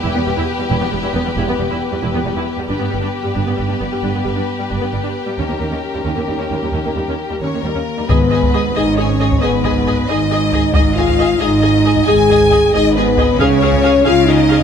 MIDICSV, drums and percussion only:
0, 0, Header, 1, 2, 480
1, 0, Start_track
1, 0, Tempo, 441501
1, 60, Time_signature, 12, 3, 24, 8
1, 4860, Tempo, 451128
1, 9180, Tempo, 441826
1, 15809, End_track
2, 0, Start_track
2, 0, Title_t, "Taiko and cinematic ensemble drums"
2, 8715, Note_on_c, 9, 41, 80
2, 8822, Note_off_c, 9, 41, 0
2, 9070, Note_on_c, 9, 41, 73
2, 9176, Note_off_c, 9, 41, 0
2, 10038, Note_on_c, 9, 41, 63
2, 10147, Note_off_c, 9, 41, 0
2, 10388, Note_on_c, 9, 41, 65
2, 10497, Note_off_c, 9, 41, 0
2, 10631, Note_on_c, 9, 41, 52
2, 10740, Note_off_c, 9, 41, 0
2, 11348, Note_on_c, 9, 41, 68
2, 11457, Note_off_c, 9, 41, 0
2, 11584, Note_on_c, 9, 41, 91
2, 11693, Note_off_c, 9, 41, 0
2, 11945, Note_on_c, 9, 41, 70
2, 12054, Note_off_c, 9, 41, 0
2, 12908, Note_on_c, 9, 41, 61
2, 13017, Note_off_c, 9, 41, 0
2, 13271, Note_on_c, 9, 41, 70
2, 13380, Note_off_c, 9, 41, 0
2, 13507, Note_on_c, 9, 41, 62
2, 13616, Note_off_c, 9, 41, 0
2, 14223, Note_on_c, 9, 41, 63
2, 14332, Note_off_c, 9, 41, 0
2, 14463, Note_on_c, 9, 41, 94
2, 14572, Note_off_c, 9, 41, 0
2, 14823, Note_on_c, 9, 41, 80
2, 14931, Note_off_c, 9, 41, 0
2, 15809, End_track
0, 0, End_of_file